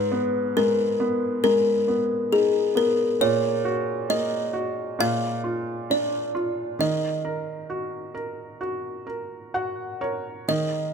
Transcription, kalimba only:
Already playing: B4
0.57 A#4
1.44 A#4
2.32 G#4
2.77 A#4
3.21 C#5
4.10 D#5
5.01 F5
5.91 D5
6.81 D#5
10.49 D#5

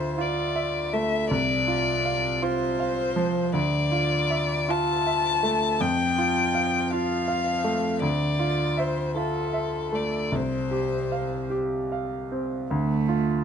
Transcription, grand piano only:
Already playing: D2 F4 E5
0.18 F4
0.56 E5
0.93 A3
1.31 C2
1.67 F4
2.05 F5
2.42 F4
2.80 F5
3.16 F3
3.53 D2
3.91 F4
4.30 E5
4.69 F4
5.07 E5
5.43 A3
5.80 F2
6.18 F4
6.54 F5
6.92 F4
7.28 F5
7.64 A3
8.02 D2
8.39 F4
8.77 E5
9.16 F4
9.53 E5
9.92 A3
10.32 C2
10.71 G4
11.12 F5
11.50 G4
11.92 F5
12.32 C4
12.71 D2
13.08 F4

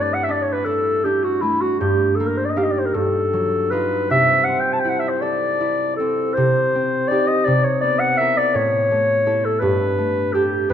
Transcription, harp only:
Already playing: G2 A3 E4 G4 A4 D5 E5
0.29 D4
0.66 E4
1.05 D4
1.42 A3
1.81 G2
2.20 A#3
2.56 D#4 G4
2.94 G2
3.33 F#3
3.72 D#4 F4
4.10 C3
4.48 C4
4.85 E4
5.22 A4
5.60 E4
6.00 C4
6.37 C3
6.75 C4
7.11 D#4 G4
7.47 C3
7.83 B3
8.19 E4 A#4
8.54 A2
8.91 A3
9.26 E4 A4
9.62 G2
9.98 A3
10.34 G4 A4
10.70 F2

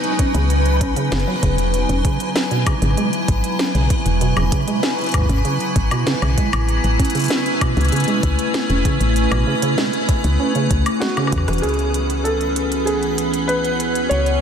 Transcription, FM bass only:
0.35 C#2
0.81 B1
1.12 F#1
1.43 E1
1.89 E1
2.82 G#1
3.28 G#1
3.75 B1
4.06 E1
4.37 E1
5.29 G#1
5.76 G#1
6.22 B1
6.53 A1
6.84 A1
7.77 C#2
8.23 C#2
8.70 E1
9.01 A1
9.31 A1
10.24 C#2
10.71 C#2
11.32 E2
11.48 E1
11.63 C#2
14.11 C#2

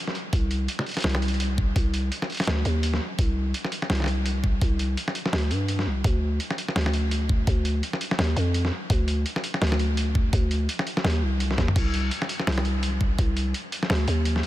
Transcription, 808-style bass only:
0.33 C2
1.04 C2
1.76 C2
2.47 D2
2.65 D#2
3.19 C2
3.90 C2
4.62 C2
5.33 D2
5.51 G2
5.86 C2
6.04 D2
6.76 D2
7.47 D2
8.19 D#2
8.36 F2
8.90 D2
9.62 D2
10.33 D2
11.04 D#2
11.22 C2
11.58 D#2
11.76 C2
12.47 C2
13.19 C2
13.90 D2
14.08 D#2

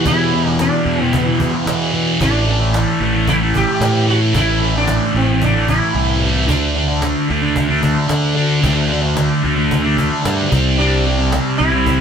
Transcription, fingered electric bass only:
0.06 E2
0.85 E2
1.66 E3
2.21 A1
3.00 A1
3.80 A2
4.35 A1
5.14 A1
5.95 C2
6.49 D2
7.30 D2
8.10 D3
8.63 D2
9.44 D2
10.25 G2
10.52 C2
11.60 C2

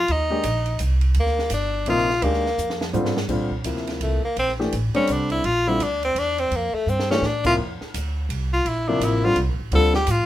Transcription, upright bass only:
0.09 D#2
0.44 A#1
0.80 C2
1.16 D2
1.50 G1
1.86 A#1
2.22 D2
2.58 F2
2.94 G2
3.28 A#1
3.65 D2
4.01 C2
4.36 A#1
4.73 A1
5.09 C2
5.44 A#1
5.80 D2
6.15 E2
6.51 F2
6.73 muted upright bass stroke
6.86 G2
7.22 A2
7.58 F2
7.82 muted upright bass stroke
7.94 D2
8.29 C2
8.65 A#1
9.00 A1
9.36 C2
9.49 A#1
9.59 A1
9.71 D2
10.07 A2
10.19 F2

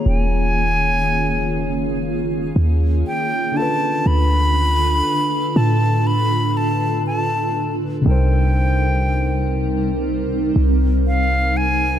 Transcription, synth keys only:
Already playing: D#3 A#3 F4 G#4 C#5
3.52 D3 D4
3.57 F4 A4
3.62 B4
8.01 C3 G3
8.06 D#4 A#4
8.11 C5

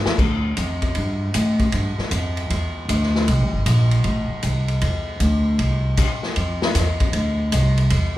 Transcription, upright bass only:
0.06 muted upright bass stroke
0.18 D2
0.57 F2
0.96 G2
1.35 A2
1.73 G2
1.98 muted upright bass stroke
2.11 F2
2.50 E2
2.89 D2
3.28 C2
3.40 A1
3.53 G1
3.66 A#1
4.04 A1
4.31 muted upright bass stroke
4.43 C2
4.82 E2
5.20 D2
5.59 C2
6.37 F2
6.75 E2
7.13 D2
7.52 C2
7.91 E2

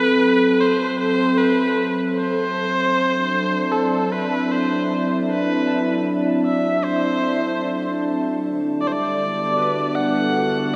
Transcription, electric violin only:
Already playing: B4
0.61 C5
1.00 C5
1.38 B4
2.16 C5
3.72 A4
4.12 B4
4.52 C5
5.31 B4
6.46 E5
6.84 C5
8.81 D5
8.87 C5
8.92 D5
9.95 F#5

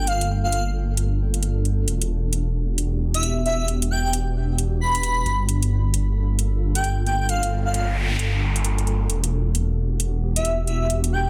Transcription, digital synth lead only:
0.07 F5
0.44 F5
0.53 F5
3.15 E5
3.46 E5
3.60 E5
3.91 G5
4.05 G5
4.81 B5
6.75 G5
7.06 G5
7.21 G5
7.29 F5
7.66 F5
7.74 F5
10.36 E5
10.67 E5
10.81 E5
11.13 G5
11.26 G5

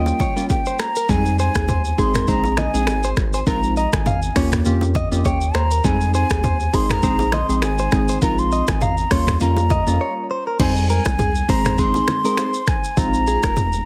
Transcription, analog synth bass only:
Already playing: D#2
1.09 F2
1.55 D#2
1.98 G#1
2.28 A#1
2.74 A#1
2.87 G#1
3.17 G#1
3.47 A#1
3.93 G#1
4.36 D#2
4.66 F2
5.12 F2
5.25 D#2
5.55 D#2
5.84 F2
6.30 D#2
6.74 G#1
7.03 A#1
7.49 A#1
7.62 G#1
7.92 G#1
8.22 A#1
8.68 G#1
9.11 D#2
9.41 F2
9.87 F2
10.60 F2
11.06 C2
11.49 G#1
12.97 A#1
13.43 F1

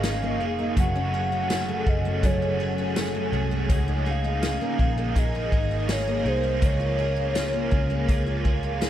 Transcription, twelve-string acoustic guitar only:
Already playing: C#3 A#3 D#4
0.04 G#4
0.22 A#3
0.40 G#4
0.59 A#3
0.77 F#2 G#4
0.95 C#4
1.14 G#4
1.32 C#4
1.50 G#4
1.68 A3
1.87 G#4
2.05 A3
2.23 F#2 G#4
2.42 C#4
2.60 G#4
2.78 C#4
2.96 G#4
3.15 A3
3.33 G#4
3.51 A3
3.70 C#3 G#4
3.88 D#4
4.06 G#4
4.24 D#4
4.43 G#4
4.61 A#3
4.79 G#4
4.98 A#3
5.17 G#4
5.35 D#4
5.53 G#4
5.71 D#4
5.89 G#4
6.07 A#3
6.26 G#4
6.43 A#3
6.62 C#3 G#4
6.80 F4
6.99 G#4
7.17 F4
7.35 G#4
7.53 A#3
7.71 G#4
7.90 A#3
8.08 G#4
8.26 F4
8.45 G#4
8.63 F4
8.81 G#4

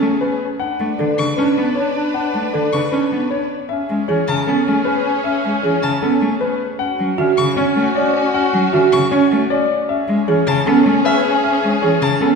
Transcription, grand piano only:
0.21 B4
0.59 F#5
0.98 D5
1.37 B4
1.75 C#5
2.14 F#5
2.53 D5
2.92 B4
3.31 C#5
3.69 E5
4.08 C#5
4.47 A4
4.85 B4
5.24 E5
5.63 C#5
6.02 A4
6.41 B4
6.79 F#5
7.18 E5
7.56 C#5
7.95 D5
8.34 F#5
8.72 E5
9.11 C#5
9.50 D5
9.89 E5
10.28 C#5
10.66 A4
11.05 B4
11.44 E5
11.82 C#5
12.21 A4

